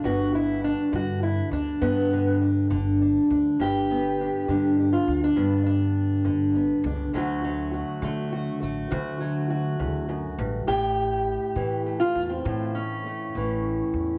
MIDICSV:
0, 0, Header, 1, 3, 480
1, 0, Start_track
1, 0, Tempo, 591133
1, 37, Time_signature, 12, 3, 24, 8
1, 11516, End_track
2, 0, Start_track
2, 0, Title_t, "Steel-string acoustic guitar"
2, 0, Program_c, 0, 25
2, 29, Note_on_c, 0, 43, 71
2, 34, Note_on_c, 0, 50, 44
2, 37, Note_on_c, 0, 59, 53
2, 40, Note_on_c, 0, 66, 84
2, 45, Note_on_c, 0, 62, 54
2, 279, Note_off_c, 0, 66, 0
2, 282, Note_on_c, 0, 64, 82
2, 518, Note_off_c, 0, 64, 0
2, 522, Note_off_c, 0, 62, 0
2, 522, Note_on_c, 0, 62, 84
2, 741, Note_off_c, 0, 50, 0
2, 750, Note_on_c, 0, 50, 57
2, 761, Note_off_c, 0, 62, 0
2, 776, Note_on_c, 0, 66, 82
2, 995, Note_off_c, 0, 66, 0
2, 998, Note_on_c, 0, 64, 75
2, 1238, Note_off_c, 0, 64, 0
2, 1241, Note_on_c, 0, 62, 82
2, 1465, Note_off_c, 0, 59, 0
2, 1475, Note_on_c, 0, 59, 106
2, 1477, Note_off_c, 0, 43, 0
2, 1481, Note_on_c, 0, 43, 70
2, 1718, Note_off_c, 0, 50, 0
2, 1726, Note_on_c, 0, 50, 46
2, 1946, Note_off_c, 0, 62, 0
2, 1952, Note_off_c, 0, 59, 0
2, 1956, Note_on_c, 0, 62, 45
2, 2183, Note_off_c, 0, 50, 0
2, 2193, Note_off_c, 0, 62, 0
2, 2193, Note_on_c, 0, 50, 58
2, 2196, Note_on_c, 0, 62, 45
2, 2447, Note_off_c, 0, 62, 0
2, 2451, Note_on_c, 0, 62, 48
2, 2685, Note_off_c, 0, 62, 0
2, 2688, Note_on_c, 0, 62, 49
2, 2894, Note_off_c, 0, 43, 0
2, 2920, Note_on_c, 0, 43, 78
2, 2934, Note_on_c, 0, 67, 106
2, 3171, Note_on_c, 0, 59, 52
2, 3413, Note_off_c, 0, 62, 0
2, 3416, Note_on_c, 0, 62, 47
2, 3635, Note_off_c, 0, 50, 0
2, 3645, Note_on_c, 0, 50, 56
2, 3653, Note_off_c, 0, 62, 0
2, 3656, Note_on_c, 0, 62, 47
2, 3891, Note_off_c, 0, 62, 0
2, 3894, Note_on_c, 0, 62, 44
2, 3996, Note_off_c, 0, 67, 0
2, 3999, Note_on_c, 0, 65, 90
2, 4124, Note_off_c, 0, 62, 0
2, 4127, Note_on_c, 0, 62, 42
2, 4241, Note_off_c, 0, 65, 0
2, 4244, Note_off_c, 0, 62, 0
2, 4254, Note_on_c, 0, 62, 87
2, 4345, Note_off_c, 0, 43, 0
2, 4346, Note_off_c, 0, 59, 0
2, 4354, Note_on_c, 0, 43, 75
2, 4357, Note_on_c, 0, 59, 46
2, 4590, Note_off_c, 0, 62, 0
2, 4600, Note_on_c, 0, 62, 81
2, 5067, Note_off_c, 0, 50, 0
2, 5077, Note_on_c, 0, 50, 61
2, 5313, Note_off_c, 0, 59, 0
2, 5323, Note_on_c, 0, 59, 41
2, 5564, Note_off_c, 0, 62, 0
2, 5574, Note_on_c, 0, 62, 53
2, 5768, Note_off_c, 0, 43, 0
2, 5773, Note_off_c, 0, 59, 0
2, 5778, Note_off_c, 0, 62, 0
2, 5795, Note_off_c, 0, 50, 0
2, 5798, Note_on_c, 0, 38, 76
2, 5805, Note_on_c, 0, 50, 60
2, 5809, Note_on_c, 0, 54, 62
2, 5811, Note_on_c, 0, 57, 62
2, 5823, Note_on_c, 0, 66, 62
2, 6034, Note_off_c, 0, 54, 0
2, 6044, Note_on_c, 0, 54, 62
2, 6275, Note_off_c, 0, 66, 0
2, 6284, Note_on_c, 0, 66, 59
2, 6512, Note_off_c, 0, 50, 0
2, 6521, Note_on_c, 0, 50, 62
2, 6528, Note_off_c, 0, 57, 0
2, 6531, Note_on_c, 0, 57, 60
2, 6751, Note_off_c, 0, 66, 0
2, 6761, Note_on_c, 0, 66, 58
2, 7002, Note_off_c, 0, 57, 0
2, 7005, Note_on_c, 0, 57, 55
2, 7221, Note_off_c, 0, 38, 0
2, 7227, Note_off_c, 0, 66, 0
2, 7231, Note_on_c, 0, 38, 71
2, 7237, Note_on_c, 0, 66, 62
2, 7462, Note_off_c, 0, 54, 0
2, 7472, Note_on_c, 0, 54, 57
2, 7705, Note_off_c, 0, 66, 0
2, 7715, Note_on_c, 0, 66, 58
2, 7947, Note_off_c, 0, 38, 0
2, 7951, Note_on_c, 0, 40, 66
2, 8186, Note_off_c, 0, 40, 0
2, 8189, Note_on_c, 0, 42, 58
2, 8431, Note_off_c, 0, 42, 0
2, 8435, Note_on_c, 0, 43, 66
2, 8646, Note_off_c, 0, 66, 0
2, 8671, Note_on_c, 0, 67, 103
2, 8672, Note_on_c, 0, 45, 67
2, 8673, Note_off_c, 0, 54, 0
2, 8675, Note_off_c, 0, 43, 0
2, 8677, Note_off_c, 0, 50, 0
2, 9391, Note_on_c, 0, 52, 57
2, 9397, Note_off_c, 0, 57, 0
2, 9397, Note_on_c, 0, 57, 41
2, 9629, Note_off_c, 0, 57, 0
2, 9632, Note_on_c, 0, 57, 43
2, 9740, Note_off_c, 0, 67, 0
2, 9743, Note_on_c, 0, 65, 99
2, 9985, Note_on_c, 0, 60, 75
2, 9989, Note_off_c, 0, 65, 0
2, 10117, Note_off_c, 0, 45, 0
2, 10120, Note_on_c, 0, 45, 74
2, 10125, Note_off_c, 0, 57, 0
2, 10128, Note_on_c, 0, 57, 47
2, 10347, Note_off_c, 0, 60, 0
2, 10350, Note_on_c, 0, 61, 86
2, 10597, Note_off_c, 0, 57, 0
2, 10607, Note_on_c, 0, 57, 44
2, 10835, Note_off_c, 0, 52, 0
2, 10842, Note_off_c, 0, 57, 0
2, 10854, Note_on_c, 0, 52, 56
2, 10864, Note_on_c, 0, 57, 41
2, 11516, Note_off_c, 0, 45, 0
2, 11516, Note_off_c, 0, 52, 0
2, 11516, Note_off_c, 0, 57, 0
2, 11516, Note_off_c, 0, 61, 0
2, 11516, End_track
3, 0, Start_track
3, 0, Title_t, "Upright bass"
3, 0, Program_c, 1, 32
3, 31, Note_on_c, 1, 31, 84
3, 590, Note_off_c, 1, 31, 0
3, 752, Note_on_c, 1, 43, 95
3, 1126, Note_off_c, 1, 43, 0
3, 1229, Note_on_c, 1, 38, 80
3, 1419, Note_off_c, 1, 38, 0
3, 1475, Note_on_c, 1, 43, 98
3, 2197, Note_on_c, 1, 31, 91
3, 2209, Note_off_c, 1, 43, 0
3, 2570, Note_off_c, 1, 31, 0
3, 2683, Note_on_c, 1, 38, 95
3, 2868, Note_off_c, 1, 38, 0
3, 2918, Note_on_c, 1, 31, 79
3, 3475, Note_off_c, 1, 31, 0
3, 3641, Note_on_c, 1, 43, 84
3, 4011, Note_off_c, 1, 43, 0
3, 4122, Note_on_c, 1, 38, 80
3, 4307, Note_off_c, 1, 38, 0
3, 4359, Note_on_c, 1, 43, 95
3, 5072, Note_on_c, 1, 31, 93
3, 5084, Note_off_c, 1, 43, 0
3, 5445, Note_off_c, 1, 31, 0
3, 5553, Note_on_c, 1, 37, 98
3, 5741, Note_off_c, 1, 37, 0
3, 5793, Note_on_c, 1, 38, 83
3, 6350, Note_off_c, 1, 38, 0
3, 6513, Note_on_c, 1, 50, 100
3, 6884, Note_off_c, 1, 50, 0
3, 6996, Note_on_c, 1, 33, 74
3, 7181, Note_off_c, 1, 33, 0
3, 7238, Note_on_c, 1, 50, 106
3, 7955, Note_on_c, 1, 38, 87
3, 7967, Note_off_c, 1, 50, 0
3, 8325, Note_off_c, 1, 38, 0
3, 8431, Note_on_c, 1, 33, 99
3, 8618, Note_off_c, 1, 33, 0
3, 8666, Note_on_c, 1, 33, 86
3, 9224, Note_off_c, 1, 33, 0
3, 9384, Note_on_c, 1, 45, 83
3, 9759, Note_off_c, 1, 45, 0
3, 9869, Note_on_c, 1, 40, 82
3, 10057, Note_off_c, 1, 40, 0
3, 10112, Note_on_c, 1, 45, 100
3, 10841, Note_on_c, 1, 33, 87
3, 10853, Note_off_c, 1, 45, 0
3, 11210, Note_off_c, 1, 33, 0
3, 11316, Note_on_c, 1, 40, 87
3, 11502, Note_off_c, 1, 40, 0
3, 11516, End_track
0, 0, End_of_file